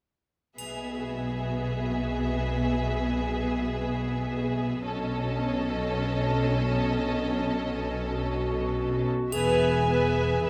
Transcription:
0.58 4.81 B1 soft
0.58 4.81 B2 soft
0.58 4.81 B3 soft
0.58 4.81 G#4 soft
0.58 4.81 E5 soft
0.58 triangle soft
4.84 9.07 B1 soft
4.84 9.07 B2 soft
4.84 9.07 C#4 soft
4.84 9.07 A4 soft
4.84 9.07 D#5 soft
8.10 9.34 F#4 medium
9.32 10.32 E1 soft
9.32 10.32 E2 soft
9.32 9.88 B3 soft
9.32 10.50 G#4 soft
9.32 9.89 B4 soft
9.32 9.89 E5 soft
9.32 10.41 G#5 soft
9.32 triangle soft
9.89 10.43 B3 soft
9.89 10.43 B4 soft
9.89 10.44 E5 soft
10.44 10.50 E1 soft
10.44 10.50 E2 soft
10.44 10.50 B3 soft
10.44 10.50 B4 soft
10.44 10.50 E5 soft

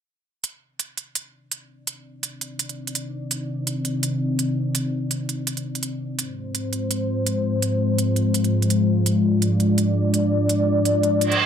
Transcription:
0.44 6.14 C4 medium
0.44 6.14 D#4 medium
0.44 6.14 D5 medium
0.44 closed hi-hat medium
0.79 closed hi-hat medium
0.97 closed hi-hat soft
1.15 closed hi-hat medium
1.52 closed hi-hat medium
1.87 closed hi-hat medium
2.23 closed hi-hat medium
2.41 closed hi-hat soft
2.59 closed hi-hat medium
2.69 closed hi-hat soft
2.87 closed hi-hat soft
2.95 closed hi-hat medium
3.31 closed hi-hat medium
3.67 closed hi-hat medium
3.85 closed hi-hat soft
4.03 closed hi-hat medium
4.39 closed hi-hat medium
4.75 closed hi-hat medium
5.11 closed hi-hat medium
5.29 closed hi-hat soft
5.47 closed hi-hat medium
5.57 closed hi-hat soft
5.75 closed hi-hat soft
5.83 closed hi-hat medium
6.18 11.46 G#3 medium
6.18 11.46 F4 medium
6.18 9.03 C5 medium
6.18 closed hi-hat medium
6.55 closed hi-hat medium
6.73 closed hi-hat soft
6.91 closed hi-hat medium
7.27 closed hi-hat medium
7.62 closed hi-hat medium
7.98 closed hi-hat medium
8.16 closed hi-hat soft
8.34 closed hi-hat medium
8.44 closed hi-hat soft
8.62 closed hi-hat soft
8.70 closed hi-hat medium
9.05 11.46 D5 loud
9.05 closed hi-hat medium
9.42 closed hi-hat medium
9.60 closed hi-hat soft
9.78 closed hi-hat medium
10.14 closed hi-hat medium
10.49 closed hi-hat medium
10.85 closed hi-hat medium
11.03 closed hi-hat soft
11.21 closed hi-hat medium
11.21 reverse cymbal medium
11.32 closed hi-hat soft

